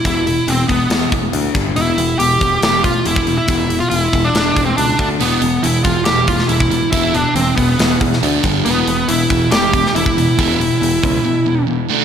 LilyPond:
<<
  \new Staff \with { instrumentName = "Lead electric guitar" } { \time 4/4 \key e \minor \tempo 4 = 139 e'4 c'8 b4 r4. | e'4 g'4 g'8 f'8 e'8. e'16~ | e'8. f'16 e'8. d'4 c'16 d'8. r16 | b4 e'8 f'8 g'8 f'8 e'4 |
e'8 d'8 c'8 b4 r4. | b4 e'4 g'4 e'4~ | e'2. r4 | }
  \new Staff \with { instrumentName = "Distorted electric guitar" } { \clef bass \time 4/4 \key e \minor r1 | r1 | r1 | <e, b, e>8 <e, b,>8 <e, b,>8 <e, b,>8 <e, b,>8 <e, b,>8 <e, b,>8 <e, b,>8 |
<e, b, e>8 <e, b,>8 <e, b,>8 <e, b,>8 <e, b,>8 <e, b,>8 <d a d'>8 <g, d g>8 | <e, b, e>8 <e, b,>8 <e, b,>8 <e, b,>8 <e, b,>8 <e, b,>8 <e, b,>8 <e, b,>8 | <e, b, e>8 <e, b,>8 <e, b,>8 <e, b,>8 <e, b,>8 <e, b,>8 <e, b,>8 <d a d'>8 | }
  \new Staff \with { instrumentName = "Overdriven electric guitar" } { \clef bass \time 4/4 \key e \minor <e, b, e>8 <e, b,>8 <e, b,>8 <e, b,>8 <e, b,>8 <e, b,>8 <d a d'>8 <g, d g>8 | <e, b, e>8 <e, b,>8 <e, b,>8 <e, b,>8 <e, b,>8 <e, b,>8 <e, b,>8 <e, b,>8 | <e, b, e>8 <e, b,>8 <e, b,>8 <e, b,>8 <e, b,>8 <e, b,>8 <e, b,>8 <d a d'>8 | <e, b, e>8 <e, b,>8 <e, b,>8 <e, b,>8 <e, b,>8 <e, b,>8 <e, b,>8 <e, b,>8 |
<e, b, e>8 <e, b,>8 <e, b,>8 <e, b,>8 <e, b,>8 <e, b,>8 <d a d'>8 <g, d g>8 | <e, b, e>8 <e, b,>8 <e, b,>8 <e, b,>8 <e, b,>8 <e, b,>8 <e, b,>8 <e, b,>8 | <e, b, e>8 <e, b,>8 <e, b,>8 <e, b,>8 <e, b,>8 <e, b,>8 <e, b,>8 <d a d'>8 | }
  \new Staff \with { instrumentName = "Picked electric bass" } { \clef bass \time 4/4 \key e \minor e,,4 e,,8 e,,8 e,,8 e,,8 d,8 g,,8 | e,,8 e,,8 e,,8 e,,8 e,,4 e,,4 | e,,4 e,,8 e,,8 e,,8 e,,8 cis,8 d,8 | e,,8 e,,8 e,,8 e,,8 e,,4 e,,4 |
e,,4 e,,8 e,,8 e,,8 e,8 d,8 g,,8 | e,,8 e,,8 e,,8 e,,8 e,,4 e,,4 | e,,4 e,,8 cis,8 r2 | }
  \new DrumStaff \with { instrumentName = "Drums" } \drummode { \time 4/4 <hho bd>8 hho8 hho8 <hho bd>8 <hho sn>8 <hho bd>8 hho8 <hho bd>8 | hho8 hho8 hho8 <hho bd>8 <hho sn>8 <hho bd>8 hho16 bd16 hho8 | <hho bd>8 hho8 hho8 <hho bd>8 <hho sn>8 <hho bd>8 hho8 <hho bd>8 | hho8 hho8 hho8 <hho bd>8 <hho sn>8 <hho bd>16 sn16 hho16 bd16 hho8 |
<hho bd>8 hho8 hho8 <hho bd>8 <hho sn>8 <hho bd>16 sn16 hho8 <hho bd>8 | hho8 hho8 hho8 <hho bd>8 <hho sn>8 <hho bd>16 sn16 hho16 bd16 hho8 | <hho bd>8 hho8 hho8 <hho bd>8 r4 r4 | }
>>